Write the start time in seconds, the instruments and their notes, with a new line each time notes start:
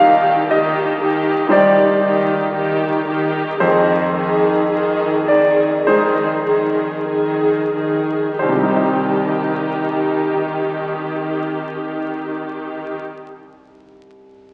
Already playing: grand piano C2 F5
0.00 viola section D#3 G4
0.50 viola section D#3 G4, grand piano D#5
1.00 viola section D#3 G4
1.49 viola section D#3 G4, grand piano G3 D#4 C5 D5
2.02 viola section D#3 G4
2.54 viola section D#3 G4
3.07 viola section D#3 G4
3.60 grand piano F2 C5, viola section D#3 G#4
4.15 viola section D#3 G#4
4.71 viola section D#3 G#4
5.28 viola section D#3 G#4, grand piano D5
5.85 viola section D#3 G#4, grand piano G#3 D#4 C5
6.46 viola section D#3 G#4
7.08 viola section D#3 G#4
7.75 viola section D#3 G#4
8.39 grand piano C2 C5, viola section D#3 G4
8.49 grand piano C3
8.55 grand piano G3
8.63 grand piano D#4
8.70 grand piano C5
8.76 grand piano D#5